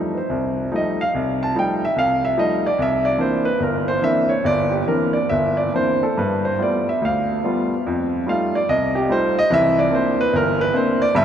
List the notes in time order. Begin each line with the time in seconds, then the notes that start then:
Already playing: F3 G3 A3 D#4
0.13 B4
0.17 C5
0.29 C2
0.71 F3 G3 A3 D#4
0.76 D#5
1.01 F5
1.15 C2
1.43 A5
1.55 F3 G3 A3 D#4 G5
1.85 E5
1.96 C2 F5
2.25 E5
2.37 F3 G3 A3 D#4 D#5
2.66 D5
2.78 C2 E5
3.05 D5
3.18 E3 A#3 C4 D4 C5
3.45 B4
3.60 G1 A#4
3.88 C5
4.02 E3 A#3 C4 D4 E5
4.29 C#5
4.44 G1 D5
4.71 G4
4.87 E3 A#3 C4 D4 A#4
5.13 D5
5.29 G1 E5
5.57 D5
5.74 E3 A#3 C4 D4 C5
6.03 A4
6.17 G2 B4
6.45 C5
6.58 G3 A3 B3 F4
6.62 D5
6.89 E5
7.02 D2 F5
7.44 G3 A3 B3 F4
7.87 F2
8.27 G3 A3 D#4 F4 F5
8.55 D5
8.69 C2 D#5
8.95 G4
9.09 G3 A3 D#4 F4 C5
9.39 D#5
9.50 C2 E3 E5
9.79 D5
9.90 A#3 C4 D4 E4
9.95 C5
10.21 B4
10.33 G1 A#4
10.61 B4
10.73 A#3 C4 D4 E4 C5
11.02 D5
11.15 G1 G2 E5